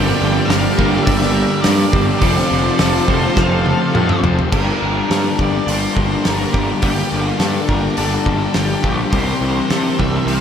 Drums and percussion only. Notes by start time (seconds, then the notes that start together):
0.50 snare, open hi-hat
0.79 kick
1.07 kick, open hi-hat
1.22 snare
1.64 snare, open hi-hat
1.93 kick
2.22 kick, open hi-hat
2.79 snare, open hi-hat
3.08 kick
3.36 kick, snare
3.66 high tom
3.95 mid tom
4.09 mid tom
4.24 floor tom
4.39 floor tom
4.52 kick, crash
5.11 snare, open hi-hat
5.39 kick
5.68 open hi-hat
5.97 kick
6.25 snare, open hi-hat
6.54 kick
6.82 kick, open hi-hat
7.40 snare, open hi-hat
7.69 kick
7.97 open hi-hat
8.26 kick
8.54 snare, open hi-hat
8.84 kick
9.13 kick, open hi-hat
9.70 snare, open hi-hat
9.99 kick
10.28 open hi-hat